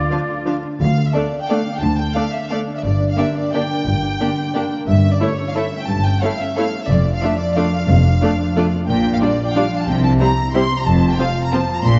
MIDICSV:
0, 0, Header, 1, 8, 480
1, 0, Start_track
1, 0, Key_signature, -1, "minor"
1, 0, Tempo, 343053
1, 1132, Time_signature, 3, 2, 24, 8
1, 4952, Tempo, 336889
1, 9272, Tempo, 329670
1, 12644, Key_signature, -1, "major"
1, 17165, End_track
2, 0, Start_track
2, 0, Title_t, "Violin section"
2, 0, Program_c, 0, 48
2, 162, Note_on_c, 0, 77, 30
2, 274, Note_off_c, 0, 77, 0
2, 659, Note_on_c, 0, 77, 30
2, 771, Note_off_c, 0, 77, 0
2, 1141, Note_on_c, 0, 77, 56
2, 1460, Note_off_c, 0, 77, 0
2, 1497, Note_on_c, 0, 76, 49
2, 1607, Note_on_c, 0, 74, 50
2, 1611, Note_off_c, 0, 76, 0
2, 1975, Note_off_c, 0, 74, 0
2, 1988, Note_on_c, 0, 79, 52
2, 2099, Note_off_c, 0, 79, 0
2, 2102, Note_on_c, 0, 77, 47
2, 2447, Note_off_c, 0, 77, 0
2, 2449, Note_on_c, 0, 79, 54
2, 2545, Note_on_c, 0, 81, 61
2, 2557, Note_off_c, 0, 79, 0
2, 2766, Note_on_c, 0, 79, 54
2, 2777, Note_off_c, 0, 81, 0
2, 3014, Note_on_c, 0, 77, 58
2, 3017, Note_off_c, 0, 79, 0
2, 3258, Note_on_c, 0, 76, 51
2, 3268, Note_off_c, 0, 77, 0
2, 3504, Note_on_c, 0, 77, 50
2, 3507, Note_off_c, 0, 76, 0
2, 3616, Note_off_c, 0, 77, 0
2, 3872, Note_on_c, 0, 76, 51
2, 3914, Note_off_c, 0, 76, 0
2, 3972, Note_on_c, 0, 74, 51
2, 4311, Note_off_c, 0, 74, 0
2, 4339, Note_on_c, 0, 77, 52
2, 4450, Note_off_c, 0, 77, 0
2, 4451, Note_on_c, 0, 76, 49
2, 4703, Note_off_c, 0, 76, 0
2, 4716, Note_on_c, 0, 74, 49
2, 4949, Note_on_c, 0, 79, 59
2, 4955, Note_off_c, 0, 74, 0
2, 6627, Note_off_c, 0, 79, 0
2, 6857, Note_on_c, 0, 76, 57
2, 7182, Note_off_c, 0, 76, 0
2, 7201, Note_on_c, 0, 74, 50
2, 7327, Note_off_c, 0, 74, 0
2, 7341, Note_on_c, 0, 73, 52
2, 7708, Note_off_c, 0, 73, 0
2, 7717, Note_on_c, 0, 77, 49
2, 7819, Note_on_c, 0, 76, 50
2, 7832, Note_off_c, 0, 77, 0
2, 8178, Note_off_c, 0, 76, 0
2, 8179, Note_on_c, 0, 79, 57
2, 8285, Note_on_c, 0, 81, 69
2, 8294, Note_off_c, 0, 79, 0
2, 8513, Note_on_c, 0, 79, 58
2, 8523, Note_off_c, 0, 81, 0
2, 8759, Note_on_c, 0, 77, 58
2, 8767, Note_off_c, 0, 79, 0
2, 9018, Note_off_c, 0, 77, 0
2, 9019, Note_on_c, 0, 76, 53
2, 9268, Note_off_c, 0, 76, 0
2, 9270, Note_on_c, 0, 77, 56
2, 9622, Note_off_c, 0, 77, 0
2, 9641, Note_on_c, 0, 76, 57
2, 9741, Note_on_c, 0, 74, 55
2, 9747, Note_off_c, 0, 76, 0
2, 10094, Note_off_c, 0, 74, 0
2, 10110, Note_on_c, 0, 77, 52
2, 10217, Note_on_c, 0, 76, 61
2, 10225, Note_off_c, 0, 77, 0
2, 10466, Note_on_c, 0, 74, 57
2, 10470, Note_off_c, 0, 76, 0
2, 10706, Note_on_c, 0, 77, 55
2, 10712, Note_off_c, 0, 74, 0
2, 12409, Note_off_c, 0, 77, 0
2, 12643, Note_on_c, 0, 79, 62
2, 12969, Note_off_c, 0, 79, 0
2, 13005, Note_on_c, 0, 77, 56
2, 13053, Note_off_c, 0, 77, 0
2, 13125, Note_on_c, 0, 74, 59
2, 13491, Note_off_c, 0, 74, 0
2, 13501, Note_on_c, 0, 79, 58
2, 13620, Note_on_c, 0, 77, 58
2, 13621, Note_off_c, 0, 79, 0
2, 13973, Note_off_c, 0, 77, 0
2, 13998, Note_on_c, 0, 81, 66
2, 14093, Note_on_c, 0, 79, 62
2, 14098, Note_off_c, 0, 81, 0
2, 14319, Note_off_c, 0, 79, 0
2, 14328, Note_on_c, 0, 81, 62
2, 14423, Note_off_c, 0, 81, 0
2, 14556, Note_on_c, 0, 82, 65
2, 15043, Note_off_c, 0, 82, 0
2, 15045, Note_on_c, 0, 84, 71
2, 15397, Note_off_c, 0, 84, 0
2, 15424, Note_on_c, 0, 82, 65
2, 15521, Note_on_c, 0, 81, 65
2, 15530, Note_off_c, 0, 82, 0
2, 15874, Note_off_c, 0, 81, 0
2, 15886, Note_on_c, 0, 79, 62
2, 15988, Note_on_c, 0, 77, 66
2, 16005, Note_off_c, 0, 79, 0
2, 16358, Note_off_c, 0, 77, 0
2, 16365, Note_on_c, 0, 82, 65
2, 16485, Note_on_c, 0, 81, 58
2, 16487, Note_off_c, 0, 82, 0
2, 16842, Note_off_c, 0, 81, 0
2, 16852, Note_on_c, 0, 82, 66
2, 16963, Note_off_c, 0, 82, 0
2, 16964, Note_on_c, 0, 84, 79
2, 17165, Note_off_c, 0, 84, 0
2, 17165, End_track
3, 0, Start_track
3, 0, Title_t, "Oboe"
3, 0, Program_c, 1, 68
3, 0, Note_on_c, 1, 74, 58
3, 606, Note_off_c, 1, 74, 0
3, 17165, End_track
4, 0, Start_track
4, 0, Title_t, "Violin section"
4, 0, Program_c, 2, 48
4, 0, Note_on_c, 2, 65, 50
4, 838, Note_off_c, 2, 65, 0
4, 1589, Note_on_c, 2, 69, 32
4, 1589, Note_on_c, 2, 74, 34
4, 1701, Note_off_c, 2, 69, 0
4, 1701, Note_off_c, 2, 74, 0
4, 2092, Note_on_c, 2, 69, 38
4, 2097, Note_on_c, 2, 74, 35
4, 2204, Note_off_c, 2, 69, 0
4, 2209, Note_off_c, 2, 74, 0
4, 3024, Note_on_c, 2, 69, 32
4, 3027, Note_on_c, 2, 74, 31
4, 3136, Note_off_c, 2, 69, 0
4, 3139, Note_off_c, 2, 74, 0
4, 3507, Note_on_c, 2, 69, 37
4, 3509, Note_on_c, 2, 74, 36
4, 3619, Note_off_c, 2, 69, 0
4, 3621, Note_off_c, 2, 74, 0
4, 4440, Note_on_c, 2, 67, 32
4, 4444, Note_on_c, 2, 74, 33
4, 4552, Note_off_c, 2, 67, 0
4, 4556, Note_off_c, 2, 74, 0
4, 4951, Note_on_c, 2, 74, 39
4, 4954, Note_on_c, 2, 67, 38
4, 5065, Note_off_c, 2, 74, 0
4, 5068, Note_off_c, 2, 67, 0
4, 5900, Note_on_c, 2, 67, 31
4, 5904, Note_on_c, 2, 74, 32
4, 6014, Note_off_c, 2, 67, 0
4, 6018, Note_off_c, 2, 74, 0
4, 6377, Note_on_c, 2, 74, 35
4, 6388, Note_on_c, 2, 67, 36
4, 6491, Note_off_c, 2, 74, 0
4, 6502, Note_off_c, 2, 67, 0
4, 7328, Note_on_c, 2, 69, 34
4, 7329, Note_on_c, 2, 73, 34
4, 7442, Note_off_c, 2, 69, 0
4, 7443, Note_off_c, 2, 73, 0
4, 7827, Note_on_c, 2, 69, 36
4, 7830, Note_on_c, 2, 73, 35
4, 7941, Note_off_c, 2, 69, 0
4, 7944, Note_off_c, 2, 73, 0
4, 8767, Note_on_c, 2, 73, 32
4, 8770, Note_on_c, 2, 69, 33
4, 8881, Note_off_c, 2, 73, 0
4, 8884, Note_off_c, 2, 69, 0
4, 9266, Note_on_c, 2, 73, 38
4, 9269, Note_on_c, 2, 69, 39
4, 9382, Note_off_c, 2, 73, 0
4, 9385, Note_off_c, 2, 69, 0
4, 10214, Note_on_c, 2, 74, 35
4, 10216, Note_on_c, 2, 65, 32
4, 10331, Note_off_c, 2, 74, 0
4, 10333, Note_off_c, 2, 65, 0
4, 10723, Note_on_c, 2, 74, 41
4, 10730, Note_on_c, 2, 65, 39
4, 10840, Note_off_c, 2, 74, 0
4, 10847, Note_off_c, 2, 65, 0
4, 11673, Note_on_c, 2, 74, 33
4, 11677, Note_on_c, 2, 65, 37
4, 11790, Note_off_c, 2, 74, 0
4, 11794, Note_off_c, 2, 65, 0
4, 12178, Note_on_c, 2, 74, 42
4, 12181, Note_on_c, 2, 65, 45
4, 12294, Note_off_c, 2, 74, 0
4, 12297, Note_off_c, 2, 65, 0
4, 13127, Note_on_c, 2, 74, 38
4, 13132, Note_on_c, 2, 65, 37
4, 13243, Note_off_c, 2, 74, 0
4, 13248, Note_off_c, 2, 65, 0
4, 13627, Note_on_c, 2, 65, 43
4, 13630, Note_on_c, 2, 74, 42
4, 13743, Note_off_c, 2, 65, 0
4, 13746, Note_off_c, 2, 74, 0
4, 14564, Note_on_c, 2, 64, 39
4, 14566, Note_on_c, 2, 72, 38
4, 14681, Note_off_c, 2, 64, 0
4, 14683, Note_off_c, 2, 72, 0
4, 15059, Note_on_c, 2, 64, 45
4, 15065, Note_on_c, 2, 72, 47
4, 15175, Note_off_c, 2, 64, 0
4, 15181, Note_off_c, 2, 72, 0
4, 15997, Note_on_c, 2, 65, 39
4, 15998, Note_on_c, 2, 72, 36
4, 16113, Note_off_c, 2, 65, 0
4, 16115, Note_off_c, 2, 72, 0
4, 16487, Note_on_c, 2, 65, 46
4, 16494, Note_on_c, 2, 72, 43
4, 16604, Note_off_c, 2, 65, 0
4, 16611, Note_off_c, 2, 72, 0
4, 17165, End_track
5, 0, Start_track
5, 0, Title_t, "Viola section"
5, 0, Program_c, 3, 48
5, 149, Note_on_c, 3, 62, 27
5, 152, Note_on_c, 3, 53, 29
5, 261, Note_off_c, 3, 62, 0
5, 264, Note_off_c, 3, 53, 0
5, 650, Note_on_c, 3, 62, 31
5, 652, Note_on_c, 3, 53, 32
5, 762, Note_off_c, 3, 62, 0
5, 764, Note_off_c, 3, 53, 0
5, 1597, Note_on_c, 3, 62, 35
5, 1600, Note_on_c, 3, 57, 33
5, 1709, Note_off_c, 3, 62, 0
5, 1712, Note_off_c, 3, 57, 0
5, 2096, Note_on_c, 3, 57, 37
5, 2101, Note_on_c, 3, 62, 36
5, 2208, Note_off_c, 3, 57, 0
5, 2213, Note_off_c, 3, 62, 0
5, 3023, Note_on_c, 3, 62, 33
5, 3025, Note_on_c, 3, 57, 36
5, 3135, Note_off_c, 3, 62, 0
5, 3137, Note_off_c, 3, 57, 0
5, 3510, Note_on_c, 3, 62, 36
5, 3515, Note_on_c, 3, 57, 35
5, 3622, Note_off_c, 3, 62, 0
5, 3627, Note_off_c, 3, 57, 0
5, 4439, Note_on_c, 3, 58, 36
5, 4441, Note_on_c, 3, 62, 34
5, 4551, Note_off_c, 3, 58, 0
5, 4553, Note_off_c, 3, 62, 0
5, 4955, Note_on_c, 3, 58, 35
5, 4955, Note_on_c, 3, 62, 37
5, 5069, Note_off_c, 3, 58, 0
5, 5069, Note_off_c, 3, 62, 0
5, 5897, Note_on_c, 3, 62, 35
5, 5902, Note_on_c, 3, 58, 33
5, 6011, Note_off_c, 3, 62, 0
5, 6016, Note_off_c, 3, 58, 0
5, 6398, Note_on_c, 3, 58, 38
5, 6400, Note_on_c, 3, 62, 39
5, 6512, Note_off_c, 3, 58, 0
5, 6514, Note_off_c, 3, 62, 0
5, 7324, Note_on_c, 3, 64, 38
5, 7328, Note_on_c, 3, 57, 35
5, 7438, Note_off_c, 3, 64, 0
5, 7442, Note_off_c, 3, 57, 0
5, 7820, Note_on_c, 3, 64, 38
5, 7821, Note_on_c, 3, 57, 39
5, 7934, Note_off_c, 3, 64, 0
5, 7935, Note_off_c, 3, 57, 0
5, 8774, Note_on_c, 3, 57, 35
5, 8777, Note_on_c, 3, 64, 36
5, 8888, Note_off_c, 3, 57, 0
5, 8891, Note_off_c, 3, 64, 0
5, 9269, Note_on_c, 3, 57, 41
5, 9273, Note_on_c, 3, 64, 40
5, 9386, Note_off_c, 3, 57, 0
5, 9389, Note_off_c, 3, 64, 0
5, 10222, Note_on_c, 3, 62, 38
5, 10223, Note_on_c, 3, 57, 37
5, 10339, Note_off_c, 3, 57, 0
5, 10339, Note_off_c, 3, 62, 0
5, 10716, Note_on_c, 3, 62, 40
5, 10720, Note_on_c, 3, 57, 41
5, 10833, Note_off_c, 3, 62, 0
5, 10837, Note_off_c, 3, 57, 0
5, 11671, Note_on_c, 3, 62, 38
5, 11673, Note_on_c, 3, 57, 40
5, 11787, Note_off_c, 3, 62, 0
5, 11790, Note_off_c, 3, 57, 0
5, 12172, Note_on_c, 3, 57, 44
5, 12176, Note_on_c, 3, 62, 42
5, 12289, Note_off_c, 3, 57, 0
5, 12292, Note_off_c, 3, 62, 0
5, 13121, Note_on_c, 3, 55, 39
5, 13123, Note_on_c, 3, 62, 42
5, 13237, Note_off_c, 3, 55, 0
5, 13240, Note_off_c, 3, 62, 0
5, 13619, Note_on_c, 3, 62, 45
5, 13621, Note_on_c, 3, 55, 43
5, 13735, Note_off_c, 3, 62, 0
5, 13737, Note_off_c, 3, 55, 0
5, 14553, Note_on_c, 3, 55, 42
5, 14553, Note_on_c, 3, 60, 42
5, 14669, Note_off_c, 3, 55, 0
5, 14669, Note_off_c, 3, 60, 0
5, 15051, Note_on_c, 3, 55, 46
5, 15055, Note_on_c, 3, 60, 41
5, 15167, Note_off_c, 3, 55, 0
5, 15172, Note_off_c, 3, 60, 0
5, 15992, Note_on_c, 3, 53, 40
5, 15992, Note_on_c, 3, 60, 41
5, 16108, Note_off_c, 3, 60, 0
5, 16109, Note_off_c, 3, 53, 0
5, 16488, Note_on_c, 3, 60, 46
5, 16494, Note_on_c, 3, 53, 45
5, 16604, Note_off_c, 3, 60, 0
5, 16610, Note_off_c, 3, 53, 0
5, 17165, End_track
6, 0, Start_track
6, 0, Title_t, "Harp"
6, 0, Program_c, 4, 46
6, 0, Note_on_c, 4, 50, 35
6, 0, Note_on_c, 4, 57, 26
6, 0, Note_on_c, 4, 62, 31
6, 0, Note_on_c, 4, 69, 30
6, 156, Note_on_c, 4, 65, 31
6, 390, Note_off_c, 4, 69, 0
6, 407, Note_on_c, 4, 69, 29
6, 637, Note_off_c, 4, 62, 0
6, 653, Note_on_c, 4, 62, 28
6, 883, Note_off_c, 4, 57, 0
6, 899, Note_on_c, 4, 57, 28
6, 1110, Note_off_c, 4, 50, 0
6, 1126, Note_on_c, 4, 50, 40
6, 1344, Note_off_c, 4, 69, 0
6, 1361, Note_on_c, 4, 69, 34
6, 1581, Note_off_c, 4, 57, 0
6, 1598, Note_on_c, 4, 57, 36
6, 1832, Note_off_c, 4, 69, 0
6, 1849, Note_on_c, 4, 69, 32
6, 2073, Note_off_c, 4, 57, 0
6, 2090, Note_on_c, 4, 57, 33
6, 2306, Note_off_c, 4, 62, 0
6, 2323, Note_on_c, 4, 62, 32
6, 2528, Note_off_c, 4, 50, 0
6, 2545, Note_on_c, 4, 50, 41
6, 2762, Note_off_c, 4, 69, 0
6, 2779, Note_on_c, 4, 69, 33
6, 3006, Note_off_c, 4, 57, 0
6, 3023, Note_on_c, 4, 57, 34
6, 3251, Note_off_c, 4, 69, 0
6, 3268, Note_on_c, 4, 69, 32
6, 3497, Note_off_c, 4, 57, 0
6, 3514, Note_on_c, 4, 57, 35
6, 3724, Note_off_c, 4, 62, 0
6, 3740, Note_on_c, 4, 62, 33
6, 3965, Note_on_c, 4, 43, 41
6, 3983, Note_off_c, 4, 50, 0
6, 3985, Note_off_c, 4, 69, 0
6, 3987, Note_off_c, 4, 65, 0
6, 3988, Note_off_c, 4, 57, 0
6, 4180, Note_off_c, 4, 62, 0
6, 4196, Note_on_c, 4, 62, 36
6, 4439, Note_on_c, 4, 50, 37
6, 4680, Note_off_c, 4, 62, 0
6, 4697, Note_on_c, 4, 62, 34
6, 4937, Note_off_c, 4, 50, 0
6, 4954, Note_on_c, 4, 50, 33
6, 5190, Note_on_c, 4, 58, 31
6, 5400, Note_off_c, 4, 43, 0
6, 5417, Note_on_c, 4, 43, 42
6, 5634, Note_off_c, 4, 62, 0
6, 5651, Note_on_c, 4, 62, 36
6, 5882, Note_off_c, 4, 50, 0
6, 5899, Note_on_c, 4, 50, 35
6, 6129, Note_off_c, 4, 62, 0
6, 6146, Note_on_c, 4, 62, 32
6, 6367, Note_off_c, 4, 50, 0
6, 6385, Note_on_c, 4, 50, 34
6, 6605, Note_off_c, 4, 58, 0
6, 6622, Note_on_c, 4, 58, 34
6, 6836, Note_off_c, 4, 43, 0
6, 6853, Note_on_c, 4, 43, 41
6, 6870, Note_off_c, 4, 50, 0
6, 6870, Note_off_c, 4, 58, 0
6, 6873, Note_off_c, 4, 62, 0
6, 7080, Note_on_c, 4, 61, 37
6, 7320, Note_on_c, 4, 55, 36
6, 7555, Note_off_c, 4, 61, 0
6, 7573, Note_on_c, 4, 61, 34
6, 7810, Note_off_c, 4, 55, 0
6, 7827, Note_on_c, 4, 55, 35
6, 8067, Note_on_c, 4, 57, 32
6, 8276, Note_off_c, 4, 43, 0
6, 8293, Note_on_c, 4, 43, 43
6, 8513, Note_off_c, 4, 61, 0
6, 8530, Note_on_c, 4, 61, 37
6, 8756, Note_off_c, 4, 55, 0
6, 8773, Note_on_c, 4, 55, 35
6, 9008, Note_off_c, 4, 61, 0
6, 9025, Note_on_c, 4, 61, 35
6, 9254, Note_off_c, 4, 55, 0
6, 9271, Note_on_c, 4, 55, 31
6, 9496, Note_off_c, 4, 57, 0
6, 9513, Note_on_c, 4, 57, 32
6, 9735, Note_on_c, 4, 41, 47
6, 9762, Note_off_c, 4, 43, 0
6, 9762, Note_off_c, 4, 55, 0
6, 9762, Note_off_c, 4, 61, 0
6, 9968, Note_on_c, 4, 62, 39
6, 10220, Note_on_c, 4, 53, 35
6, 10447, Note_off_c, 4, 62, 0
6, 10465, Note_on_c, 4, 62, 34
6, 10701, Note_off_c, 4, 53, 0
6, 10719, Note_on_c, 4, 53, 34
6, 10936, Note_off_c, 4, 57, 0
6, 10954, Note_on_c, 4, 57, 38
6, 11164, Note_off_c, 4, 41, 0
6, 11182, Note_on_c, 4, 41, 47
6, 11400, Note_off_c, 4, 62, 0
6, 11417, Note_on_c, 4, 62, 38
6, 11655, Note_off_c, 4, 53, 0
6, 11672, Note_on_c, 4, 53, 41
6, 11904, Note_off_c, 4, 62, 0
6, 11921, Note_on_c, 4, 62, 36
6, 12153, Note_off_c, 4, 53, 0
6, 12171, Note_on_c, 4, 53, 35
6, 12395, Note_off_c, 4, 57, 0
6, 12413, Note_on_c, 4, 57, 36
6, 12639, Note_on_c, 4, 46, 50
6, 12659, Note_off_c, 4, 41, 0
6, 12660, Note_off_c, 4, 57, 0
6, 12856, Note_off_c, 4, 62, 0
6, 12874, Note_on_c, 4, 62, 39
6, 13105, Note_off_c, 4, 53, 0
6, 13123, Note_on_c, 4, 53, 44
6, 13358, Note_off_c, 4, 62, 0
6, 13375, Note_on_c, 4, 62, 37
6, 13606, Note_off_c, 4, 53, 0
6, 13623, Note_on_c, 4, 53, 36
6, 13862, Note_on_c, 4, 55, 38
6, 14084, Note_on_c, 4, 48, 50
6, 14101, Note_off_c, 4, 46, 0
6, 14105, Note_off_c, 4, 53, 0
6, 14105, Note_off_c, 4, 62, 0
6, 14322, Note_on_c, 4, 64, 42
6, 14543, Note_off_c, 4, 55, 0
6, 14560, Note_on_c, 4, 55, 42
6, 14789, Note_off_c, 4, 64, 0
6, 14806, Note_on_c, 4, 64, 41
6, 15037, Note_off_c, 4, 55, 0
6, 15054, Note_on_c, 4, 55, 40
6, 15296, Note_on_c, 4, 60, 36
6, 15525, Note_on_c, 4, 41, 50
6, 15539, Note_off_c, 4, 64, 0
6, 15540, Note_off_c, 4, 48, 0
6, 15540, Note_off_c, 4, 55, 0
6, 15733, Note_off_c, 4, 60, 0
6, 15750, Note_on_c, 4, 60, 45
6, 15995, Note_on_c, 4, 48, 43
6, 16225, Note_off_c, 4, 60, 0
6, 16242, Note_on_c, 4, 60, 40
6, 16464, Note_off_c, 4, 48, 0
6, 16482, Note_on_c, 4, 48, 41
6, 16718, Note_on_c, 4, 53, 40
6, 16950, Note_on_c, 4, 46, 53
6, 16972, Note_off_c, 4, 48, 0
6, 16975, Note_off_c, 4, 60, 0
6, 16979, Note_off_c, 4, 41, 0
6, 17165, Note_off_c, 4, 46, 0
6, 17165, Note_off_c, 4, 53, 0
6, 17165, End_track
7, 0, Start_track
7, 0, Title_t, "Cello section"
7, 0, Program_c, 5, 48
7, 1129, Note_on_c, 5, 38, 51
7, 1500, Note_off_c, 5, 38, 0
7, 2552, Note_on_c, 5, 38, 51
7, 2921, Note_off_c, 5, 38, 0
7, 3971, Note_on_c, 5, 43, 52
7, 4340, Note_off_c, 5, 43, 0
7, 5425, Note_on_c, 5, 43, 55
7, 5795, Note_off_c, 5, 43, 0
7, 6855, Note_on_c, 5, 43, 54
7, 7226, Note_off_c, 5, 43, 0
7, 8296, Note_on_c, 5, 43, 50
7, 8672, Note_off_c, 5, 43, 0
7, 9751, Note_on_c, 5, 41, 57
7, 10120, Note_off_c, 5, 41, 0
7, 11185, Note_on_c, 5, 41, 60
7, 11564, Note_off_c, 5, 41, 0
7, 12657, Note_on_c, 5, 46, 56
7, 13042, Note_off_c, 5, 46, 0
7, 14089, Note_on_c, 5, 48, 58
7, 14478, Note_off_c, 5, 48, 0
7, 15526, Note_on_c, 5, 41, 55
7, 15918, Note_off_c, 5, 41, 0
7, 16957, Note_on_c, 5, 46, 58
7, 17165, Note_off_c, 5, 46, 0
7, 17165, End_track
8, 0, Start_track
8, 0, Title_t, "Double bass section"
8, 0, Program_c, 6, 48
8, 1127, Note_on_c, 6, 38, 50
8, 1499, Note_off_c, 6, 38, 0
8, 2546, Note_on_c, 6, 38, 51
8, 2918, Note_off_c, 6, 38, 0
8, 3963, Note_on_c, 6, 31, 51
8, 4335, Note_off_c, 6, 31, 0
8, 5422, Note_on_c, 6, 31, 51
8, 5794, Note_off_c, 6, 31, 0
8, 6852, Note_on_c, 6, 31, 51
8, 7225, Note_off_c, 6, 31, 0
8, 8290, Note_on_c, 6, 31, 52
8, 8669, Note_off_c, 6, 31, 0
8, 9742, Note_on_c, 6, 29, 56
8, 10116, Note_off_c, 6, 29, 0
8, 11185, Note_on_c, 6, 29, 57
8, 11565, Note_off_c, 6, 29, 0
8, 12642, Note_on_c, 6, 34, 52
8, 13035, Note_off_c, 6, 34, 0
8, 14084, Note_on_c, 6, 36, 50
8, 14475, Note_off_c, 6, 36, 0
8, 15518, Note_on_c, 6, 29, 57
8, 15914, Note_off_c, 6, 29, 0
8, 16949, Note_on_c, 6, 34, 58
8, 17165, Note_off_c, 6, 34, 0
8, 17165, End_track
0, 0, End_of_file